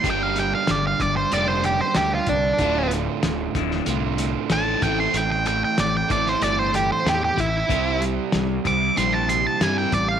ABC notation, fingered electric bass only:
X:1
M:4/4
L:1/8
Q:1/4=94
K:Dm
V:1 name="Fingered electric bass" clef=bass
G,,,2 G,,, G,,, F,,,2 D,, C,, | D,,,2 D,,, D,,, C,,2 A,,, A,,, | A,,,2 A,,, A,,, G,,,2 E,, A,,, | C,,2 C,, C,, B,,,2 G,, A,,, |]